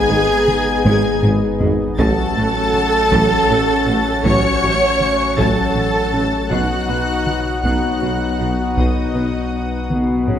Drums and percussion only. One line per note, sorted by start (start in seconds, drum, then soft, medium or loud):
0.48 taiko mid medium
0.85 taiko low-mid medium
1.23 taiko low-mid medium
1.61 taiko low loud
1.99 taiko loud
2.74 taiko mid medium
3.12 taiko medium
4.25 taiko loud
5.01 taiko mid medium
5.38 taiko medium
6.51 taiko loud
7.27 taiko mid medium
7.64 taiko medium
8.77 taiko medium
9.90 taiko mid medium
10.28 taiko low-mid medium